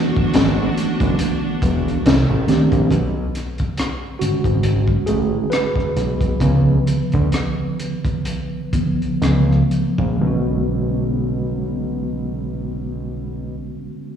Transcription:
Already playing: E3 A3 B3 D4 F#4
0.16 G#1, kick
0.34 G#1, snare, closed hi-hat
0.77 closed hi-hat
1.00 F#1, kick, closed hi-hat
1.19 closed hi-hat
1.62 E1, kick, closed hi-hat
1.88 closed hi-hat
2.05 C2 D#3, snare, closed hi-hat
2.30 A1
2.47 D#3 A3 C4 D4 G4, snare, closed hi-hat
2.72 A#1, kick, closed hi-hat
2.91 B1, kick, closed hi-hat
3.35 cross-stick, closed hi-hat
3.58 kick, closed hi-hat
3.77 cross-stick, closed hi-hat
4.19 G#1 D3 G#3 C#4 F#4, closed hi-hat
4.44 G#1, kick, closed hi-hat
4.63 closed hi-hat
4.88 kick
5.06 A1 G#4, closed hi-hat
5.50 B4, cross-stick, closed hi-hat
5.76 kick, cross-stick
5.96 B1, cross-stick, closed hi-hat
6.21 kick, closed hi-hat
6.40 C#2 D3 F3 B3, kick, closed hi-hat
6.87 closed hi-hat
7.12 D2, kick, closed hi-hat
7.32 cross-stick, closed hi-hat
7.79 closed hi-hat
8.05 kick, closed hi-hat
8.25 closed hi-hat
8.73 D3 F3 B3, kick, closed hi-hat
9.02 closed hi-hat
9.21 C#2 F3 A3 B3, cross-stick, closed hi-hat
9.51 cross-stick
9.71 closed hi-hat
9.98 A#1, kick
10.16 D3 G#3
10.21 B1 B3 C#4
10.27 F#4

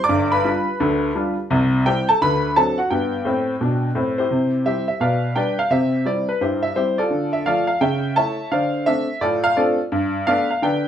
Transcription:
0.04 D5 D6
0.09 G1 G2
0.32 B4 B5
0.45 G3 D4 F4
0.80 D2 D3
1.15 G3 D4 F4
1.50 C2 C3
1.86 G3 C4 E4 G4 G5
2.09 A4 A5
2.21 D2 D3 B4 B5
2.56 F#3 C4 D4 A4 A5
2.78 F#4 F#5
2.90 G2 B3 G4 G5
3.25 A2 C4
3.61 B2 D4
3.95 A2 C4
4.18 E4 G4 C5
4.31 C3
4.65 G3 C4 E4 G4 C5 E5
4.88 E5
5.00 B2 B4 D5 F5
5.36 G3 D4 G4 B4 D5 G5
5.59 F5
5.70 C3 G4 C5 E5
6.05 G3 C4 E4 D5
6.29 B4
6.41 G2 E4 G4 C5
6.63 E5
6.76 G3 C4 E4 G4 C5
6.98 F4 A4 D5
7.10 D3
7.33 E5
7.46 F3 A3 F4 A4 D5 F5
7.67 F5
7.81 C#3 C#5 E5 G5
8.16 A3 E4 C#5 E5 A5
8.51 D3 C5 D5 F5
8.86 A3 C4 D4 E5
9.21 A2 F4 A4 D5
9.44 F5
9.56 A3 C4 D4 F4 A4 D5
9.92 G2
10.27 A3 B3 D4 B4 D5 F5
10.51 F5
10.62 D3 B4 D5 G5

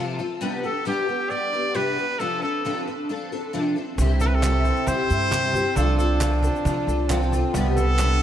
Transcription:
Already playing: C3 F3 C4 F4
0.00 A4
0.19 C4 F4 A4
0.41 C3 G3 B3 D4 G4
0.64 B3 D4 G4 A4
0.85 C3 G3 B3 D4 G4
1.08 B3 D4 G4
1.30 G3 B3 D4 G4 D5
1.53 B3 D4 G4
1.74 C3 G3 B3 D4 G4 B4
1.97 B3 D4 G4
2.19 C3 F3 C4 D4 A4
2.42 C4 D4 A4
2.65 C3 F3 C4 D4 A4
2.88 C4 D4 A4
3.09 F3 C4 D4 A4
3.32 C4 D4 A4
3.53 C3 F3 C4 D4 A4
3.76 C4 D4 A4
3.98 C2 C3 G3 C4 E4 G4, cajon bass, shaker
4.20 C4 E4 G4 A4, cajon bass, shaker
4.27 B4
4.35 A4
4.42 C3 G3 C4 E4 G4, cajon bass, cajon slap, clap, shaker
4.65 C4 E4 G4, cajon bass
4.77 shaker
4.87 C3 G3 C4 E4 G4 C5, cajon bass, shaker
5.10 G2 C4 E4 G4, shaker
5.31 C3 G3 C4 E4 G4, cajon bass, cajon slap, clap, shaker
5.44 shaker
5.54 C4 E4 G4, cajon bass, shaker
5.76 C2 C3 F3 C4 D4 F4 A4, cajon bass, shaker
5.98 C4 F4 A4, cajon bass, shaker
6.20 C3 F3 C4 F4 A4, cajon bass, cajon slap, clap, shaker
6.43 C4 F4 A4, cajon bass, shaker
6.56 shaker
6.65 C3 F3 C4 F4 A4, cajon bass, shaker
6.87 C2 C4 F4 A4, shaker
7.10 C3 F3 C4 F4 A4, cajon bass, cajon slap, clap, shaker
7.22 shaker
7.32 C4 F4 A4, cajon bass, shaker
7.54 C2 C3 G3 B3 D4 G4, cajon bass, shaker
7.77 B3 D4 G4 A4, cajon bass, shaker
7.99 C3 G3 B3 D4 G4, cajon bass, cajon slap, clap, shaker

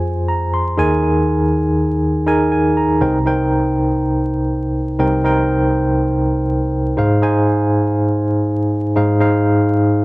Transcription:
Already playing: F2 F4 G#4 C5 G#5
0.28 A#5
0.54 C6
0.77 D#2 D#3 D#4 G#4 A#4 G#5
2.27 D#4 G#4 A#4 G#5
2.52 G#5
2.77 A#5
3.01 C2 C3 D#4 A#4 C5 G5
3.26 D#4 A#4 C5 G5
4.99 C2 C3 D#4 A#4 C5 G5
5.24 D#4 A#4 C5 G5
6.97 G#2 D#4 G#4 C5 F5
7.22 D#4 G#4 C5 G#5
8.96 G#2 D#4 G#4 C5 F5
9.20 D#4 G#4 C5 F5

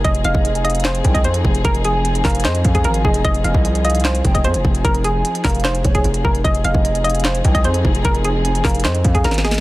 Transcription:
Already playing: C4 D#4 G#4
0.04 F1 F3 D#5, kick, closed hi-hat
0.15 closed hi-hat
0.24 F1 D#5 F5, closed hi-hat
0.35 F1, kick
0.45 closed hi-hat
0.55 closed hi-hat
0.64 D#5 F5, closed hi-hat
0.70 closed hi-hat
0.75 closed hi-hat
0.80 closed hi-hat
0.85 C5, snare, clap, closed hi-hat
0.95 closed hi-hat
1.04 C2 G5, kick, closed hi-hat
1.14 D#5, kick, closed hi-hat
1.24 F2 C5, closed hi-hat
1.34 closed hi-hat
1.45 F1, kick
1.55 closed hi-hat
1.65 F1 A#4, kick, closed hi-hat
1.75 closed hi-hat
1.85 G#4 G#5, closed hi-hat
2.05 closed hi-hat
2.15 closed hi-hat
2.25 F1 A#4 F5, kick, snare, clap, closed hi-hat, open hi-hat
2.30 closed hi-hat
2.35 closed hi-hat
2.40 closed hi-hat
2.45 F2 C5 D#5, snare, clap, closed hi-hat
2.55 closed hi-hat
2.64 F2 F5, kick, closed hi-hat
2.75 G#4, kick, closed hi-hat
2.84 G#1 A#4, closed hi-hat
2.94 closed hi-hat
3.05 F1 G#4 D#5, kick
3.14 closed hi-hat
3.25 F1 D#5, kick, closed hi-hat
3.34 closed hi-hat
3.44 F1 D#5 F5, closed hi-hat
3.54 C2, kick
3.65 closed hi-hat
3.75 closed hi-hat
3.84 D#5 F5, closed hi-hat
3.90 closed hi-hat
3.95 closed hi-hat
4.00 closed hi-hat
4.04 C5, snare, clap, closed hi-hat
4.15 closed hi-hat
4.25 F1 G5, kick, closed hi-hat
4.34 D#5, kick, closed hi-hat
4.44 F2 C5, closed hi-hat
4.54 F1, closed hi-hat
4.65 F1, kick
4.75 closed hi-hat
4.85 F1 A#4, kick, closed hi-hat
4.95 closed hi-hat
5.04 G#4 G#5, closed hi-hat
5.25 closed hi-hat
5.35 closed hi-hat
5.44 F1 A#4 F5, kick, snare, clap, closed hi-hat, open hi-hat
5.50 closed hi-hat
5.55 closed hi-hat
5.60 closed hi-hat
5.64 C5, snare, clap, closed hi-hat
5.75 closed hi-hat
5.84 F1 C#5, kick, closed hi-hat
5.95 G#4, kick, closed hi-hat
6.04 F1, closed hi-hat
6.14 closed hi-hat
6.25 F1 A#4, kick
6.35 closed hi-hat
6.44 F1 F3 C4 D#4 G#4 D#5, kick, closed hi-hat
6.55 closed hi-hat
6.64 F1 D#5 F5, closed hi-hat
6.75 F1, kick
6.85 closed hi-hat
6.95 closed hi-hat
7.04 D#5 F5, closed hi-hat
7.10 closed hi-hat
7.15 closed hi-hat
7.20 closed hi-hat
7.25 C5, snare, clap, closed hi-hat
7.35 closed hi-hat
7.45 C2 G5, kick, closed hi-hat
7.55 D#5, kick, closed hi-hat
7.64 F2 C5, closed hi-hat
7.74 closed hi-hat
7.85 F1, kick
7.95 closed hi-hat
8.05 F1 A#4, kick, closed hi-hat
8.15 closed hi-hat
8.24 G#4 G#5, closed hi-hat
8.45 closed hi-hat
8.55 closed hi-hat
8.65 F1 A#4 F5, kick, snare, clap, closed hi-hat, open hi-hat
8.70 closed hi-hat
8.75 closed hi-hat
8.80 closed hi-hat
8.85 F2 C5 D#5, snare, clap, closed hi-hat
8.95 closed hi-hat
9.04 F2 F5, kick, closed hi-hat
9.15 G#4, kick, closed hi-hat
9.24 G#1 A#4, snare, closed hi-hat
9.31 snare, closed hi-hat
9.38 snare
9.44 G#4 D#5, snare
9.51 snare, closed hi-hat

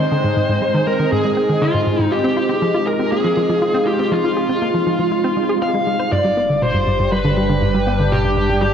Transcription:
Already playing: G#3 C4 D#4 C5 G5
0.12 D3
0.24 G#2
0.37 G#2
0.49 G#2
0.62 G#3
0.74 D#3
0.87 G#3 A#4
1.00 D#3
1.12 G#2 G#4
1.25 G#3
1.37 C4
1.49 D#3
1.62 D3 F4
1.74 G#2
1.87 G#2
1.99 G#2
2.12 F4 G4
2.24 C4
2.30 F4
2.37 F4
2.49 C4
2.62 F3
2.74 F4
2.87 G#4 A#4
2.99 C4
3.12 A#3 G#4
3.24 F3
3.37 F3
3.49 F3
3.62 F4
3.74 C4
3.87 F4 G4
3.99 C4
4.12 F3 F4
4.24 F4
4.37 G#4
4.49 C4
4.62 A#3
4.75 F3
4.87 F3
4.99 F3
5.12 F4
5.24 C4
5.37 G#3
5.49 G#4
5.62 C4 F5
5.74 G#3
5.87 G#3
5.99 C5
6.12 G1 G2 G3 D5
6.24 G3 D4
6.30 G4
6.37 B3
6.46 D3 G5
6.62 B2 C5
6.74 G2
6.87 G2
6.99 G2
7.12 G3 B4
7.24 D3
7.37 G3
7.49 D3
7.62 G2
7.74 G3
7.87 B3
8.00 D3
8.12 B2 G4
8.25 G2
8.37 G2
8.50 G2
8.62 G3 G4

